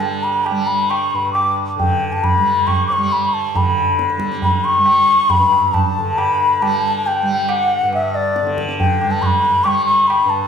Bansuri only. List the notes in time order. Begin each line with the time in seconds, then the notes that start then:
0.00 A5
0.23 B5
0.44 A5
0.67 B5
0.90 C#6
1.11 C#6
1.15 B5
1.33 D6
1.79 G5
2.13 A5
2.23 B5
2.67 C#6
2.88 D6
2.93 C#6
3.12 B5
3.34 A5
3.57 B5
4.44 B5
4.65 C#6
5.30 B5
5.73 A5
6.18 B5
6.62 A5
7.07 G5
7.49 F#5
7.94 E5
8.15 D5
8.80 G5
9.11 A5
9.22 C#6
9.26 B5
9.64 C#6 D6
9.86 C#6
10.07 B5
10.30 A5